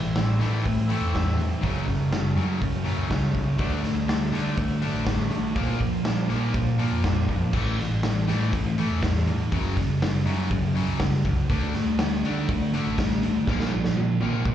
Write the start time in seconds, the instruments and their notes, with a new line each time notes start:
Already playing: clean electric guitar A2 E3 A3 C4 E4, distorted electric guitar A2 E3
0.05 picked electric bass A1
0.14 clean electric guitar A2 E3 A3 C4 E4, distorted electric guitar A2 E3, snare, open hi-hat
0.39 distorted electric guitar A2 E3 A3, picked electric bass A2, clean electric guitar A3 C4 E4, snare, open hi-hat
0.64 distorted electric guitar A2 E3, picked electric bass A2, kick, open hi-hat
0.88 distorted electric guitar A2 E3 A3, clean electric guitar A3 C4 E4, open hi-hat
1.01 picked electric bass E2
1.12 distorted electric guitar A2 E3, clean electric guitar E3 A3 C4 E4, kick, snare, open hi-hat
1.28 snare
1.37 picked electric bass E2, distorted electric guitar A2 E3, open hi-hat
1.61 picked electric bass F#1, distorted electric guitar F#2 C#3 F#3, clean electric guitar F#2 C#3 F#3 A3 C#4, kick, open hi-hat
1.86 distorted electric guitar F#2 C#3, kick, snare, open hi-hat
2.00 picked electric bass F#1
2.10 clean electric guitar F#2 C#3 F#3 A3, distorted electric guitar F#2 C#3, snare, open hi-hat
2.14 clean electric guitar C#4
2.36 picked electric bass F#2, distorted electric guitar F#2 C#3 F#3, clean electric guitar F#3 A3 C#4, open hi-hat
2.61 distorted electric guitar F#2 C#3, picked electric bass F#2, kick, open hi-hat
2.84 distorted electric guitar F#2 C#3 F#3, clean electric guitar F#3 A3 C#4, open hi-hat
2.97 picked electric bass C#2
3.08 distorted electric guitar F#2 C#3, clean electric guitar C#3 F#3 A3 C#4, kick, snare, open hi-hat
3.23 snare
3.33 picked electric bass C#2, distorted electric guitar F#2 C#3, kick, open hi-hat
3.57 picked electric bass D2, clean electric guitar D3 F#3 A3 D4, distorted electric guitar D3 A3 D4, kick, open hi-hat
3.84 distorted electric guitar D3 A3, snare, open hi-hat
3.95 picked electric bass D2
4.06 clean electric guitar D3 F#3 A3 D4, distorted electric guitar D3 A3, snare, open hi-hat
4.31 distorted electric guitar D3 A3 D4, picked electric bass D3, clean electric guitar F#3 A3 D4, snare, open hi-hat
4.57 distorted electric guitar D3 A3, picked electric bass D3, kick, open hi-hat
4.80 distorted electric guitar D3 A3 D4, clean electric guitar A3 D4, open hi-hat
4.84 clean electric guitar F#3
4.94 picked electric bass A1
5.05 clean electric guitar D3 F#3 A3 D4, distorted electric guitar D3 A3, kick, snare, open hi-hat
5.19 snare
5.30 picked electric bass A1, distorted electric guitar D3 A3, open hi-hat
5.54 picked electric bass A#1, clean electric guitar A#2 F3 A#3 D4, distorted electric guitar A#2 F3 A#3, kick, open hi-hat
5.79 distorted electric guitar A#2 F3, kick, open hi-hat
5.93 picked electric bass A#1
6.03 clean electric guitar A#2 F3 A#3 D4, distorted electric guitar A#2 F3, snare, open hi-hat
6.28 distorted electric guitar A#2 F3 A#3, picked electric bass A#2, clean electric guitar F3 A#3 D4, open hi-hat
6.54 distorted electric guitar A#2 F3, picked electric bass A#2, kick, open hi-hat
6.78 distorted electric guitar A#2 F3 A#3, clean electric guitar F3 A#3 D4, open hi-hat
6.92 picked electric bass F2
7.03 clean electric guitar A#2 F3 A#3 D4, distorted electric guitar A#2 F3, kick, snare, open hi-hat
7.28 picked electric bass F2, distorted electric guitar A#2 F3, kick, open hi-hat
7.53 picked electric bass A1, distorted electric guitar A2 E3 A3, kick, crash
7.78 distorted electric guitar A2 E3, snare, open hi-hat
7.91 picked electric bass A1
8.03 distorted electric guitar A2 E3, snare, open hi-hat
8.27 distorted electric guitar A2 E3 A3, picked electric bass A2, snare, open hi-hat
8.53 picked electric bass A2, distorted electric guitar A2 E3, kick, open hi-hat
8.78 distorted electric guitar A2 E3 A3, open hi-hat
8.90 picked electric bass E2
9.03 distorted electric guitar A2 E3, kick, snare, open hi-hat
9.15 snare
9.26 picked electric bass E2, distorted electric guitar A2 E3, open hi-hat
9.52 picked electric bass F#1, distorted electric guitar F#2 C#3 F#3, kick, open hi-hat
9.77 distorted electric guitar F#2 C#3, kick, snare, open hi-hat
9.89 picked electric bass F#1
10.02 distorted electric guitar F#2 C#3, snare, open hi-hat
10.25 picked electric bass F#2, distorted electric guitar F#2 C#3 F#3, open hi-hat
10.51 distorted electric guitar F#2 C#3, picked electric bass F#2, kick, open hi-hat
10.75 distorted electric guitar F#2 C#3 F#3, open hi-hat
10.86 picked electric bass C#2
11.00 distorted electric guitar F#2 C#3, kick, snare, open hi-hat
11.25 picked electric bass C2, distorted electric guitar F#2 C#3, kick, open hi-hat
11.50 picked electric bass D2, distorted electric guitar D3 A3 D4, kick, open hi-hat
11.75 distorted electric guitar D3 A3, snare, open hi-hat
11.86 picked electric bass D2
11.99 distorted electric guitar D3 A3, snare, open hi-hat
12.23 picked electric bass D3, distorted electric guitar D3 A3 D4, open hi-hat
12.49 picked electric bass D3, distorted electric guitar D3 A3, kick, open hi-hat
12.74 distorted electric guitar D3 A3 D4, open hi-hat
12.87 picked electric bass A1
12.98 distorted electric guitar D3 A3, kick, snare, open hi-hat
13.11 snare
13.23 picked electric bass D2, distorted electric guitar D3 A3, open hi-hat
13.47 picked electric bass A#1, distorted electric guitar A#2 F3 A#3, kick, snare
13.60 snare
13.73 distorted electric guitar A#2 F3
13.84 picked electric bass A#1, snare
13.97 distorted electric guitar A#2 F3, high tom
14.20 picked electric bass A#2, distorted electric guitar A#2 F3 A#3, high tom
14.33 mid tom
14.45 distorted electric guitar A#2 F3, picked electric bass A#2, kick